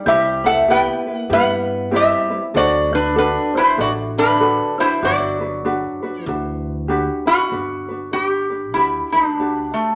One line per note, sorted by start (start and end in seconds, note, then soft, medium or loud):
0.06 0.86 C2 medium
0.06 0.42 G3 medium
0.06 0.44 C4 medium
0.06 0.44 E4 medium
0.06 0.44 G4 medium
0.06 0.42 G4 medium
0.06 0.43 B4 medium
0.06 0.46 E5 medium
0.44 0.67 A3 medium
0.44 0.69 C4 soft
0.44 0.68 E4 soft
0.44 0.67 A4 medium
0.44 0.68 B4 medium
0.44 0.70 F#5 medium
0.68 1.10 B3 medium
0.68 1.07 E4 medium
0.68 1.06 G4 medium
0.68 1.05 B4 medium
0.68 1.27 B4 medium
0.68 1.15 G5 medium
1.07 1.26 A#3 medium
1.07 1.30 E4 soft
1.07 1.30 B4 soft
1.15 1.33 F#5 medium
1.29 2.10 G2 medium
1.29 1.89 B3 medium
1.29 1.91 E4 medium
1.29 1.90 G4 medium
1.29 1.92 B4 medium
1.29 1.89 B4 medium
1.29 1.95 F#5 medium
1.91 2.39 G3 medium
1.91 2.30 C4 medium
1.91 2.30 E4 medium
1.91 2.30 G4 medium
1.91 2.29 B4 medium
1.96 2.41 G4 medium
1.96 2.40 E5 medium
2.30 2.55 C4 soft
2.30 2.54 E4 soft
2.30 2.54 B4 medium
2.54 3.35 D2 medium
2.54 2.91 F#3 medium
2.54 2.92 D4 medium
2.54 2.92 F#4 medium
2.54 2.91 F#4 medium
2.54 2.92 A4 medium
2.54 2.93 C5 medium
2.54 2.95 D5 medium
2.93 3.15 D3 medium
2.93 3.15 D4 soft
2.93 3.16 D4 medium
2.93 3.15 F#4 soft
2.93 3.16 B4 medium
3.15 3.52 D3 medium
3.15 3.54 D4 medium
3.15 3.52 D4 medium
3.15 3.54 F#4 medium
3.15 3.53 A4 medium
3.15 3.53 B4 medium
3.54 3.77 E3 medium
3.54 3.77 D4 soft
3.54 3.78 E4 medium
3.54 3.77 F#4 soft
3.54 3.77 C5 medium
3.58 3.80 C5 medium
3.77 4.58 A1 medium
3.77 3.90 F#3 medium
3.77 4.40 D4 medium
3.77 4.40 F#4 medium
3.77 3.91 F#4 medium
3.77 4.39 A4 medium
3.77 3.90 D5 medium
4.18 4.75 D3 medium
4.18 4.75 D4 medium
4.18 4.75 B4 medium
4.40 4.78 D4 medium
4.40 4.78 F#4 medium
4.40 4.77 A4 medium
4.78 5.01 E3 medium
4.78 5.01 D4 soft
4.78 5.01 E4 medium
4.78 5.01 F#4 soft
4.78 5.02 C5 soft
4.78 5.04 C5 medium
5.02 5.83 G1 medium
5.02 6.23 F#3 medium
5.02 5.40 D4 medium
5.02 5.40 F#4 medium
5.02 6.86 F#4 medium
5.02 5.39 B4 medium
5.02 6.23 D5 medium
5.41 5.64 D4 soft
5.41 5.64 F#4 soft
5.41 5.64 B4 medium
5.65 6.02 D4 medium
5.65 6.02 F#4 medium
5.65 6.01 B4 medium
6.02 6.26 D4 soft
6.02 6.27 F#4 medium
6.02 6.26 B4 medium
6.23 7.07 D2 loud
6.23 6.85 E3 medium
6.23 6.86 C5 medium
6.27 6.89 D4 medium
6.27 6.89 F#4 medium
6.27 6.90 B4 medium
6.88 7.26 D4 medium
6.88 7.26 F#4 medium
6.88 7.26 G4 medium
6.88 7.24 B4 medium
7.26 7.50 D4 soft
7.26 7.50 F#4 medium
7.26 8.13 F#4 medium
7.26 7.50 B4 soft
7.51 8.76 G1 medium
7.51 7.89 D4 medium
7.51 7.89 F#4 medium
7.51 7.87 B4 medium
7.88 8.12 D4 soft
7.88 8.13 F#4 soft
7.88 8.13 B4 soft
8.13 8.50 D4 medium
8.13 8.24 F#4 medium
8.13 8.49 G4 medium
8.13 8.49 B4 medium
8.24 8.77 G4 medium
8.50 8.75 D4 soft
8.50 8.74 B4 soft
8.74 9.00 D2 medium
8.74 9.14 D4 medium
8.74 9.12 E4 medium
8.74 9.14 F#4 soft
8.74 9.13 G4 soft
8.74 9.12 B4 medium
9.12 9.70 D2 medium
9.12 9.77 D4 medium
9.12 9.38 D4 soft
9.12 9.38 F#4 soft
9.12 9.37 B4 soft
9.39 9.95 D4 medium
9.39 9.95 F#4 medium
9.39 9.95 G4 medium
9.39 9.95 B4 medium
9.74 9.95 A3 medium